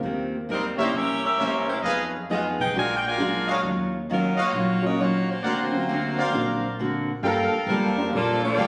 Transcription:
Already playing: A#3 C4 F4 A#4
0.03 D#2 D#3 A#3 C4 G4
0.49 D#3 G3 A#3 C4 D#4 G4 A#4
0.77 D2 A#3 C#4 E4 G4 A#4 C5 C#5 D5 E5
0.81 D#4 G4
0.93 C2 C3 E3 A#3 C#4 G4 A#4 E5
0.97 C#4
1.26 C#4 G4 A#4 E5
1.38 C3 E3 A#3 C#4 A#4 C5 C#5 E5
1.68 A#3 E4 G4 C5
1.83 F2 F3 B3 D#4 G#4 B4 D#5 F5
2.30 F3 B3 D#4 F4 G#4 D#5
2.59 B1 D#4 G#4 B4 G5
2.74 A#1 A#2 G#3 D4 F#4
2.78 F4 A#4 D5 G#5
2.97 G5
3.07 F4 A#4 D5 G#5
3.18 A#2 F#3 G#3 D4 F4 F#4
3.48 D4 F#4 G#4 A#4 C#5 D#5 F5
3.63 D#2 D#3 F#3 C#4 F4
4.10 D#3 F#3 C#4 F4
4.14 A#4
4.37 F4 F#4 C#5 D#5 F5, muted upright bass stroke
4.41 A#3 F#4
4.53 A#1 D#3 F#3 C#4 F4
4.82 F#3 A#3 C#4 F4
4.86 C#4 F#4 A#4 D#5
4.99 D#3 F#3 A#3 C#4 F4 F#4 C#5
5.29 C3 F#3 A#3 C4 F4 F#4 C5
5.43 D2 D3 A#3 C4 F#4 A#4 C5 D5 F#5
5.72 F#3 A#3 C4 F4
5.89 D3 A#3 C4 F#4
6.18 A#4 C5 D5 F5
6.33 A#1 D3 F#3 A#3 C4 F4 F#4
6.79 D3 A#3 C4 F#4
7.23 G2 G3 A#3 D4 F4 A4 A#4 F5 G5
7.27 A4
7.52 muted upright bass stroke
7.67 F2 D3 F3 G3 A#3 D4 F4 A4 A#4
7.71 A4
7.97 G3 A#3 D4 F4 A#4
8.12 A#1 F3 G3 A#3 D4 F4 A4 D5
8.42 F3 A#3 D4 F4 A4 D5
8.57 D2 G3 A#3 F4 G4 A4 F5 G5

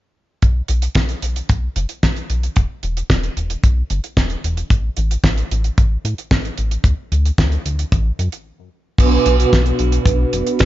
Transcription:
0.42 B1, kick, closed hi-hat
0.68 B1, closed hi-hat
0.82 closed hi-hat
0.95 B1, kick, snare, closed hi-hat
1.09 closed hi-hat
1.22 B1, closed hi-hat
1.36 closed hi-hat
1.49 B1, kick, closed hi-hat
1.76 F#1, closed hi-hat
1.89 closed hi-hat
2.03 B1, kick, snare, closed hi-hat
2.17 closed hi-hat
2.30 B1, closed hi-hat
2.43 closed hi-hat
2.56 E1, kick, closed hi-hat
2.83 E1, closed hi-hat
2.97 closed hi-hat
3.10 E1, kick, snare, closed hi-hat
3.24 closed hi-hat
3.37 E1, closed hi-hat
3.50 closed hi-hat
3.64 B1, kick, closed hi-hat
3.90 G1, closed hi-hat
4.04 closed hi-hat
4.17 E1, kick, snare, closed hi-hat
4.30 closed hi-hat
4.44 E1, closed hi-hat
4.57 closed hi-hat
4.70 A1, kick, closed hi-hat
4.97 A1, closed hi-hat
5.11 closed hi-hat
5.24 A1, kick, snare, closed hi-hat
5.38 closed hi-hat
5.51 A1, closed hi-hat
5.64 closed hi-hat
5.78 A1, kick, closed hi-hat
6.05 A2, closed hi-hat
6.18 closed hi-hat
6.31 A1, kick, snare, closed hi-hat
6.45 closed hi-hat
6.58 A1, closed hi-hat
6.71 closed hi-hat
6.84 D2, kick, closed hi-hat
7.12 D2, closed hi-hat
7.26 closed hi-hat
7.38 D2, kick, snare, closed hi-hat
7.52 closed hi-hat
7.65 D2, closed hi-hat
7.79 closed hi-hat
7.92 A1, kick, closed hi-hat
8.19 F#2, closed hi-hat
8.32 closed hi-hat
8.98 B1 B2 B3 D4 F#4 B4, kick, closed hi-hat, crash
9.26 B1, closed hi-hat
9.39 B2 B3 D4 F#4 B4, closed hi-hat
9.53 B1, kick, snare, closed hi-hat
9.66 closed hi-hat
9.79 B1, closed hi-hat
9.92 closed hi-hat
10.06 B1, kick, closed hi-hat
10.33 F#1, closed hi-hat
10.47 closed hi-hat
10.59 B1, kick, snare, closed hi-hat

